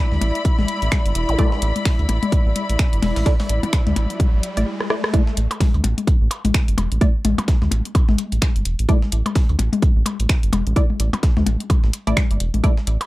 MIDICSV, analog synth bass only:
0, 0, Header, 1, 2, 480
1, 0, Start_track
1, 0, Tempo, 468750
1, 1420, Time_signature, 4, 2, 24, 8
1, 13377, End_track
2, 0, Start_track
2, 0, Title_t, "Analog synth bass"
2, 0, Program_c, 0, 38
2, 121, Note_on_c, 0, 38, 90
2, 196, Note_off_c, 0, 38, 0
2, 219, Note_on_c, 0, 33, 86
2, 326, Note_off_c, 0, 33, 0
2, 599, Note_on_c, 0, 33, 100
2, 675, Note_off_c, 0, 33, 0
2, 840, Note_on_c, 0, 33, 91
2, 915, Note_off_c, 0, 33, 0
2, 1080, Note_on_c, 0, 31, 77
2, 1155, Note_off_c, 0, 31, 0
2, 1178, Note_on_c, 0, 28, 83
2, 1285, Note_off_c, 0, 28, 0
2, 1319, Note_on_c, 0, 33, 95
2, 1395, Note_off_c, 0, 33, 0
2, 1659, Note_on_c, 0, 33, 94
2, 1766, Note_off_c, 0, 33, 0
2, 2039, Note_on_c, 0, 38, 91
2, 2115, Note_off_c, 0, 38, 0
2, 2138, Note_on_c, 0, 33, 86
2, 2245, Note_off_c, 0, 33, 0
2, 2520, Note_on_c, 0, 33, 96
2, 2595, Note_off_c, 0, 33, 0
2, 2760, Note_on_c, 0, 33, 93
2, 2835, Note_off_c, 0, 33, 0
2, 2999, Note_on_c, 0, 31, 80
2, 3075, Note_off_c, 0, 31, 0
2, 3098, Note_on_c, 0, 28, 84
2, 3205, Note_off_c, 0, 28, 0
2, 3239, Note_on_c, 0, 33, 103
2, 3315, Note_off_c, 0, 33, 0
2, 3577, Note_on_c, 0, 33, 97
2, 3685, Note_off_c, 0, 33, 0
2, 3959, Note_on_c, 0, 38, 93
2, 4035, Note_off_c, 0, 38, 0
2, 4059, Note_on_c, 0, 33, 87
2, 4166, Note_off_c, 0, 33, 0
2, 4440, Note_on_c, 0, 33, 97
2, 4515, Note_off_c, 0, 33, 0
2, 4681, Note_on_c, 0, 33, 89
2, 4756, Note_off_c, 0, 33, 0
2, 5500, Note_on_c, 0, 33, 100
2, 5606, Note_off_c, 0, 33, 0
2, 5880, Note_on_c, 0, 38, 91
2, 5955, Note_off_c, 0, 38, 0
2, 5980, Note_on_c, 0, 33, 90
2, 6087, Note_off_c, 0, 33, 0
2, 6362, Note_on_c, 0, 33, 100
2, 6436, Note_off_c, 0, 33, 0
2, 6601, Note_on_c, 0, 33, 92
2, 6676, Note_off_c, 0, 33, 0
2, 6841, Note_on_c, 0, 31, 81
2, 6916, Note_off_c, 0, 31, 0
2, 6939, Note_on_c, 0, 28, 91
2, 7046, Note_off_c, 0, 28, 0
2, 7081, Note_on_c, 0, 33, 98
2, 7156, Note_off_c, 0, 33, 0
2, 7420, Note_on_c, 0, 33, 98
2, 7526, Note_off_c, 0, 33, 0
2, 7802, Note_on_c, 0, 38, 91
2, 7876, Note_off_c, 0, 38, 0
2, 7900, Note_on_c, 0, 33, 84
2, 8006, Note_off_c, 0, 33, 0
2, 8281, Note_on_c, 0, 33, 95
2, 8356, Note_off_c, 0, 33, 0
2, 8522, Note_on_c, 0, 33, 94
2, 8596, Note_off_c, 0, 33, 0
2, 8762, Note_on_c, 0, 31, 81
2, 8836, Note_off_c, 0, 31, 0
2, 8861, Note_on_c, 0, 28, 84
2, 8967, Note_off_c, 0, 28, 0
2, 9003, Note_on_c, 0, 33, 100
2, 9077, Note_off_c, 0, 33, 0
2, 9342, Note_on_c, 0, 33, 93
2, 9447, Note_off_c, 0, 33, 0
2, 9722, Note_on_c, 0, 38, 91
2, 9796, Note_off_c, 0, 38, 0
2, 9821, Note_on_c, 0, 33, 86
2, 9927, Note_off_c, 0, 33, 0
2, 10201, Note_on_c, 0, 33, 99
2, 10276, Note_off_c, 0, 33, 0
2, 10441, Note_on_c, 0, 33, 86
2, 10516, Note_off_c, 0, 33, 0
2, 10682, Note_on_c, 0, 31, 79
2, 10756, Note_off_c, 0, 31, 0
2, 10780, Note_on_c, 0, 28, 83
2, 10886, Note_off_c, 0, 28, 0
2, 10921, Note_on_c, 0, 33, 97
2, 10996, Note_off_c, 0, 33, 0
2, 11260, Note_on_c, 0, 33, 94
2, 11366, Note_off_c, 0, 33, 0
2, 11641, Note_on_c, 0, 38, 89
2, 11716, Note_off_c, 0, 38, 0
2, 11740, Note_on_c, 0, 33, 85
2, 11846, Note_off_c, 0, 33, 0
2, 12121, Note_on_c, 0, 33, 95
2, 12196, Note_off_c, 0, 33, 0
2, 12362, Note_on_c, 0, 33, 86
2, 12436, Note_off_c, 0, 33, 0
2, 12601, Note_on_c, 0, 31, 81
2, 12676, Note_off_c, 0, 31, 0
2, 12700, Note_on_c, 0, 28, 91
2, 12806, Note_off_c, 0, 28, 0
2, 12842, Note_on_c, 0, 33, 101
2, 12916, Note_off_c, 0, 33, 0
2, 13179, Note_on_c, 0, 33, 99
2, 13286, Note_off_c, 0, 33, 0
2, 13377, End_track
0, 0, End_of_file